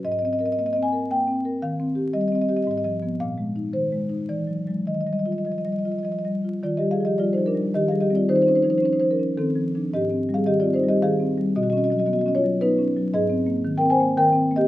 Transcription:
0.05 G#2 D#5
0.12 D#5
0.19 C4 D#5
0.25 D#5
0.33 D#5
0.39 A#4 D#5
0.46 D#5
0.53 D#5
0.58 A#3 D#5
0.66 D#5
0.73 C4 D#5
0.83 G#5
0.93 A#4
1.10 A#3 G5
1.28 C4
1.45 A#4
1.62 D#3 F5
1.80 C4
1.95 G4
2.13 G3 D#5
2.21 D#5
2.28 D#5
2.32 C4 D#5
2.41 D#5
2.49 G4 D#5
2.57 D#5
2.64 G#2 D#5
2.71 D#5
2.77 D#5
2.84 F3 D#5
3.02 F3 B3
3.20 A#2 F5
3.38 G#3
3.56 D#4
3.73 D#3 C5
3.92 G#3
4.10 D#4
4.29 E3 D5
4.47 F#3
4.68 F#3 G#3
4.87 D#3 D#5
4.94 D#5
5.01 D#5
5.07 G3 D#5
5.13 D#5
5.19 D#5
5.25 F4 D#5
5.32 D#5
5.38 D#5
5.45 F3 D#5
5.52 D#5
5.58 D#5
5.65 G3 D#5
5.72 D#5
5.79 D#5
5.85 F4 D#5
5.92 D#5
5.99 D#5
6.03 F3 D#5
6.12 D#5
6.19 D#5
6.25 G3 D#5
6.45 F4
6.63 D#3 F4 D5
6.77 G3 G4 D#5
6.91 G#4 F5
7.00 F3
7.05 G4 D#5
7.18 G3 F4 D5
7.33 D#4 C5
7.38 F3
7.46 D4 A#4
7.55 G3
7.74 D#3 G4 D#5
7.88 G3 G#4 F5
8.01 G4 D#5
8.10 G3 C4
8.15 F4 D5
8.29 D#3 D#4 C5
8.35 D#4 C5
8.42 D#4 C5
8.47 C#4 D#4 C5
8.55 D#4 C5
8.62 F3 D#4 C5
8.70 D#4 C5
8.78 D#4 C5
8.82 C#4 D#4 C5
8.93 D#4 C5
9.00 F3 D#4 C5
9.11 C#4 A#4
9.19 C#4
9.37 D#3 C4 A4
9.56 F3
9.75 F3 D4
9.93 G#2 G4 D#5
10.11 C4
10.29 G3
10.34 G#4 F5
10.46 D#3 G4 D#5
10.60 F4 D5
10.64 C4
10.74 D#4 C5
10.83 G3
10.89 G4 D#5
11.02 D#3 G#4 F5
11.20 C4
11.38 G3
11.56 B2 F#4 D#5
11.63 F#4 D#5
11.70 C#4 F#4 D#5
11.77 F#4 D#5
11.84 F#4 D#5
11.90 F#3 F#4 D#5
11.99 F#4 D#5
12.05 B3 F#4 D#5
12.13 F#4 D#5
12.19 F#4 D#5
12.26 C#4 F#4 D#5
12.35 F4 C#5
12.44 F#3
12.61 B3 D#4 B4
12.78 C#4
12.97 F#3
13.14 G#2 G#4 D#5
13.29 C4
13.47 A#3
13.65 D#3
13.78 C4 A#4 G5
13.90 C5 G#5
14.00 A#3
14.17 D#3 A#4 G5
14.33 C4
14.51 A#3
14.56 G4 D#5

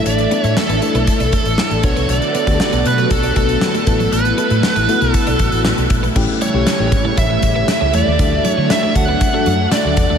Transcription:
Already playing: E3 A3 D4 E4 A4
0.06 A1 D5, closed hi-hat
0.19 muted clean electric guitar stroke, closed hi-hat
0.30 A3 B3 D4 E4 A4, closed hi-hat
0.42 A2 A3 C#5, closed hi-hat
0.57 A4, snare
0.69 A1 B3, closed hi-hat
0.82 A3 D4 E4 A4, muted clean electric guitar stroke, closed hi-hat
0.95 B1 B3, closed hi-hat
1.07 muted clean electric guitar stroke, kick, closed hi-hat
1.20 B1 D4, closed hi-hat
1.32 A3, kick, closed hi-hat
1.45 A1, closed hi-hat
1.58 A3, snare
1.71 A1, muted clean electric guitar stroke, closed hi-hat
1.83 B1 D3 F#3 B3 D4 F#4 A4 C#5, kick, closed hi-hat
1.96 C2 B3, closed hi-hat
2.09 B1 D5, closed hi-hat
2.22 muted clean electric guitar stroke, closed hi-hat
2.35 B3, closed hi-hat
2.47 D2 A3 B3 D4 F#4 G4, kick, closed hi-hat
2.54 A4
2.60 D5, snare
2.73 B1 B3, closed hi-hat
2.85 B2 B4, muted clean electric guitar stroke, closed hi-hat
2.98 B3, closed hi-hat
3.10 B1 A4, muted clean electric guitar stroke, kick, closed hi-hat
3.23 D4, closed hi-hat
3.36 B1 A3 B3 D4 F#4 A4, kick, closed hi-hat
3.49 closed hi-hat
3.61 snare
3.74 A3, closed hi-hat
3.87 A1 A3 B3 E4 A4, muted clean electric guitar stroke, kick, closed hi-hat
4.00 F#3, closed hi-hat
4.12 A1 B4, closed hi-hat
4.25 muted clean electric guitar stroke, closed hi-hat
4.37 A3 B3 E4 A4, closed hi-hat
4.50 A2 A3, closed hi-hat
4.63 snare
4.76 A1 B3, closed hi-hat
4.88 A3 B3 E4 F#4, muted clean electric guitar stroke, closed hi-hat
5.01 B1 B3, closed hi-hat
5.12 A4, muted clean electric guitar stroke, kick, closed hi-hat
5.27 B1 D4, closed hi-hat
5.39 A1 A3, kick, closed hi-hat
5.52 A1, closed hi-hat
5.65 A3, snare
5.78 B1, muted clean electric guitar stroke, closed hi-hat
5.90 A#1, kick, closed hi-hat
6.03 B3, closed hi-hat
6.15 A1 C#3 E3 G3 A3 C#4 E4 G4, kick, crash
6.41 G3 C#5, closed hi-hat
6.53 B1 A3 C#4 E4 G4, muted clean electric guitar stroke
6.67 A3, snare, closed hi-hat
6.79 A1 A3 C#4 E4 G4
6.92 A2, muted clean electric guitar stroke, kick, closed hi-hat
7.05 A3
7.17 A1 C#4 E5, kick, closed hi-hat
7.30 muted clean electric guitar stroke
7.43 A1, kick, closed hi-hat
7.56 B3
7.68 muted clean electric guitar stroke, snare, closed hi-hat
7.81 C#2 C#4
7.93 E2 A3 D5, closed hi-hat
8.07 D#2
8.19 D2 F#3 A3 D4 F#4 A4, kick, closed hi-hat
8.32 muted clean electric guitar stroke
8.45 F#3 C#5, closed hi-hat
8.57 D3 F#3
8.70 E5, snare, closed hi-hat
8.83 A3
8.95 D2 A3 D4 F#4 A4 F#5, muted clean electric guitar stroke, kick, closed hi-hat
9.08 B3
9.21 muted clean electric guitar stroke, kick, closed hi-hat
9.33 A3 D4 F#4 A4
9.46 F#2 F#3, closed hi-hat
9.72 A3 D5, snare, closed hi-hat
9.85 D2, muted clean electric guitar stroke
9.97 E2, kick, closed hi-hat
10.10 D#2 A3

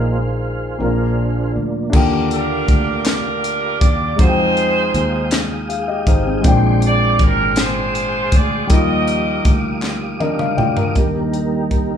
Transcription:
Already playing: A#1 A#2 F3 A#3 D#4 F4 G#4 A#4 C5 F5
0.78 A#1 A#2 F3 A#3 C4 D4 F4 A#4
0.86 D4
1.56 D2
1.90 D#2 D3 A#3 D4, kick, crash
1.94 F4 G4 F5 D6
2.31 D4 G4 A#4, closed hi-hat
2.68 D2, kick, closed hi-hat
3.05 D4 G4 A#4, snare, clap, closed hi-hat
3.44 closed hi-hat
3.81 D#2 D5, kick, closed hi-hat
4.16 F2 G#3 D#4 F4 G#4 C5 G5 D#6, kick, closed hi-hat
4.22 D#4 F#4 G#4
4.29 G5
4.57 closed hi-hat
4.94 D#2, closed hi-hat
5.31 snare, clap, closed hi-hat
5.69 G#4 F5, closed hi-hat
5.88 G4 D#5
6.06 G#1 D#4 C5, kick, closed hi-hat
6.26 C4 G#4
6.41 A#1 A#2 G#3 C4, kick, closed hi-hat
6.45 D4 G5 C6 D6
6.82 closed hi-hat
6.87 D5
7.19 G#1 A#4, kick, closed hi-hat
7.56 F4 G#4, snare, clap, closed hi-hat
7.60 C5
7.95 closed hi-hat
8.32 D2 D5, kick, closed hi-hat
8.67 D#2 F3 G3 A#3 D#4 G4 F5 D6 D#6, kick, closed hi-hat
8.72 F4 G4 A#4 D#5
9.08 closed hi-hat
9.45 D2, kick, closed hi-hat
9.83 snare, clap
10.20 D4 A#4 D#5, high tom
10.39 F5, mid tom
10.57 D2 F4 G4 D5 G5, mid tom
10.77 D4 A#4, floor tom
10.94 D#2 D#3 G3 A#3 D#4 G4 A#4, kick, closed hi-hat
11.33 closed hi-hat
11.71 A#4, kick, closed hi-hat

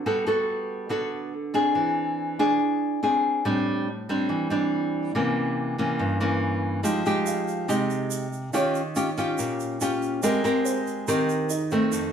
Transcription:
0.06 G3 B3 F#4 A4
0.27 B3 F#4 A4
0.89 D3 B3 F#4 A4
1.54 C4 D4 G#4
1.75 E3
2.39 D4 G#4
3.03 C4 D4 G#4
3.45 A2 G3 C4 D4
4.09 G3 C4 D4
4.29 E3
4.50 G3 C4 D4
5.15 C3 E3 A#3 C#4
5.78 E3 A#3 C#4
5.99 G2
6.20 E3 A#3 C#4
6.83 F3 G#3 D#4 G4, shaker
7.06 G#3 D#4 G4, shaker
7.26 F5, shaker
7.48 shaker
7.68 C3 G#3 D#4 G4, shaker
7.90 shaker
8.11 shaker
8.33 shaker
8.53 D#3 C#4 F4 G4 C#5, shaker
8.75 shaker
8.96 C#4 F4 G4, shaker
9.17 C#4 F4 G4, shaker
9.38 A#2, shaker
9.60 shaker
9.81 C#4 F4 G4, shaker
10.02 shaker
10.23 G#3 C4 G4 A#4 D#5, shaker
10.44 C4 G4 A#4, shaker
10.65 C5, shaker
10.87 shaker
11.08 D#3 C4 G4 A#4, shaker
11.29 shaker
11.50 D#4, shaker
11.71 D#3 A3 C4, shaker
11.92 F2, shaker

